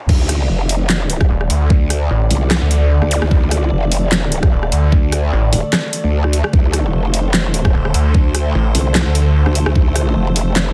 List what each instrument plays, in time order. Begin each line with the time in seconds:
0.09 wobble bass D2, ambient pad D3 A3 A4 D5, kick, crash
0.29 cross-stick, closed hi-hat
0.49 wobble bass F1
0.69 open hi-hat
0.90 snare, clap
1.10 closed hi-hat
1.21 kick, cross-stick
1.30 detuned saw bass D#1
1.41 cross-stick
1.50 detuned saw bass D2, closed hi-hat
1.70 wobble bass D2, kick
1.90 cross-stick, closed hi-hat
2.10 detuned saw bass A1
2.31 wobble bass C2, open hi-hat
2.51 cross-stick, snare, clap
2.62 detuned saw bass D2
2.71 closed hi-hat
3.02 wobble bass D2, cross-stick
3.11 closed hi-hat, zap
3.22 wobble bass D2, cross-stick
3.31 wobble bass D2, kick
3.51 cross-stick, closed hi-hat
3.71 wobble bass F1
3.92 open hi-hat
4.12 snare, clap
4.32 closed hi-hat
4.43 kick, cross-stick
4.52 detuned saw bass D#1
4.63 cross-stick
4.72 detuned saw bass D2, closed hi-hat
4.92 wobble bass D2, kick
5.12 cross-stick, closed hi-hat
5.33 detuned saw bass A1
5.53 wobble bass D#1, open hi-hat
5.73 cross-stick, snare, clap
5.93 closed hi-hat
6.04 wobble bass D2
6.24 cross-stick
6.33 closed hi-hat
6.44 cross-stick
6.53 wobble bass D2, ambient pad C5, kick
6.73 cross-stick, closed hi-hat
6.94 wobble bass F1
7.14 open hi-hat
7.34 snare, clap
7.54 closed hi-hat
7.65 kick, cross-stick
7.74 detuned saw bass D#1
7.85 cross-stick
7.94 detuned saw bass D2, closed hi-hat
8.14 wobble bass D2, kick
8.35 cross-stick, closed hi-hat
8.55 detuned saw bass A1
8.75 wobble bass C2, open hi-hat
8.95 cross-stick, snare, clap
9.06 detuned saw bass D2
9.15 closed hi-hat
9.46 wobble bass D2, cross-stick
9.55 closed hi-hat
9.66 wobble bass D2, cross-stick
9.75 wobble bass D2, kick
9.96 cross-stick, closed hi-hat
10.16 wobble bass F1
10.36 open hi-hat
10.56 snare, clap